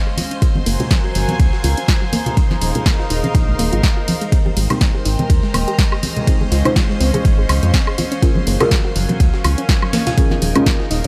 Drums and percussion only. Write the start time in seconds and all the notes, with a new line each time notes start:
0.17 open hi-hat, ride, high conga
0.31 closed hi-hat, ride
0.42 kick, closed hi-hat, ride
0.56 high conga
0.66 open hi-hat
0.80 closed hi-hat, ride, low conga
0.91 kick, snare, closed hi-hat, ride, high conga
1.15 open hi-hat, ride
1.28 closed hi-hat, high conga, low conga
1.40 kick, closed hi-hat, ride
1.53 snare
1.64 open hi-hat, ride, high conga
1.77 closed hi-hat
1.88 kick, snare, closed hi-hat, ride
2.13 open hi-hat, ride, high conga
2.26 closed hi-hat, low conga
2.37 kick, closed hi-hat, ride
2.51 snare, high conga
2.62 open hi-hat, ride
2.75 closed hi-hat, low conga
2.86 kick, snare, closed hi-hat, ride, high conga
2.99 snare
3.10 open hi-hat, ride
3.23 closed hi-hat, high conga, low conga
3.35 kick, closed hi-hat, ride
3.59 open hi-hat, ride, high conga
3.73 closed hi-hat
3.83 kick, snare, closed hi-hat, ride
4.08 open hi-hat, ride, high conga
4.21 closed hi-hat, ride
4.32 kick, closed hi-hat, ride
4.46 high conga
4.57 open hi-hat
4.70 closed hi-hat, ride, low conga, high woodblock
4.81 kick, snare, closed hi-hat, ride, high conga
5.05 open hi-hat, ride
5.19 closed hi-hat, high conga, low conga
5.30 kick, closed hi-hat, ride
5.43 snare
5.54 open hi-hat, ride, high conga, high woodblock
5.68 closed hi-hat
5.79 kick, snare, closed hi-hat, ride
5.92 high woodblock
6.03 open hi-hat, ride, high conga
6.17 closed hi-hat, low conga
6.27 kick, closed hi-hat, ride
6.41 high conga
6.52 open hi-hat, ride
6.65 closed hi-hat, low conga, high woodblock
6.76 kick, snare, closed hi-hat, ride, high conga
6.90 snare
7.00 open hi-hat, ride
7.14 closed hi-hat, high conga, low conga
7.25 kick, closed hi-hat, ride
7.49 open hi-hat, ride, high conga, high woodblock
7.63 closed hi-hat
7.74 kick, snare, closed hi-hat, ride
7.87 high woodblock
7.98 open hi-hat, ride, high conga
8.12 closed hi-hat, ride
8.22 kick, closed hi-hat, ride
8.35 high conga
8.47 open hi-hat
8.60 closed hi-hat, ride, low conga, high woodblock
8.71 kick, snare, closed hi-hat, ride, high conga
8.96 open hi-hat, ride
9.09 closed hi-hat, high conga, low conga
9.20 kick, closed hi-hat, ride
9.34 snare
9.44 open hi-hat, ride, high conga, high woodblock
9.58 closed hi-hat
9.69 kick, snare, closed hi-hat, ride
9.82 high woodblock
9.93 snare, open hi-hat, ride, high conga
10.07 snare, closed hi-hat, ride, low conga
10.18 kick, closed hi-hat, ride
10.31 snare, high conga
10.42 open hi-hat, ride
10.56 closed hi-hat, low conga, high woodblock
10.66 kick, snare, closed hi-hat, ride, high conga
10.80 snare
10.91 open hi-hat, ride